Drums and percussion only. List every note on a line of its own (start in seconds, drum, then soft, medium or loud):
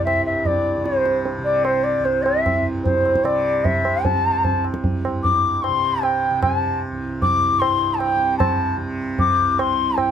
0.07 tabla na medium
0.45 tabla tin medium
0.45 tabla ge medium
0.86 tabla te medium
1.05 tabla te medium
1.25 tabla tin medium
1.65 tabla na medium
2.05 tabla tin medium
2.26 tabla na medium
2.46 tabla na medium
2.46 tabla ge medium
2.86 tabla tin medium
2.86 tabla ge medium
3.06 tabla na soft
3.15 tabla ke soft
3.25 tabla na medium
3.65 tabla tin medium
3.65 tabla ge medium
3.85 tabla na medium
4.05 tabla tin medium
4.05 tabla ge medium
4.44 tabla tin medium
4.44 tabla ge medium
4.65 tabla na soft
4.74 tabla ke medium
4.84 tabla tin medium
4.84 tabla ge medium
5.05 tabla na medium
5.25 tabla tin medium
5.25 tabla ge medium
5.64 tabla na medium
6.03 tabla na medium
6.43 tabla na medium
6.43 tabla ge medium
7.22 tabla tin medium
7.22 tabla ge medium
7.62 tabla na medium
8.00 tabla na medium
8.40 tabla na medium
8.40 tabla ge medium
9.19 tabla tin medium
9.19 tabla ge medium
9.59 tabla na medium
9.98 tabla na medium